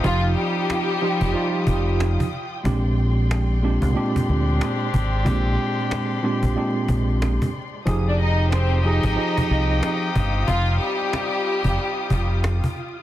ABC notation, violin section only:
X:1
M:4/4
L:1/16
Q:"Swing 16ths" 1/4=92
K:Fdor
V:1 name="Violin section"
[Ff]2 [G,G]8- [G,G]2 z4 | z16 | z16 | z [Dd] [Ee]2 [Cc]2 [Ee]6- [Ee] z3 |
[Ff]2 [G,G]8- [G,G]2 z4 |]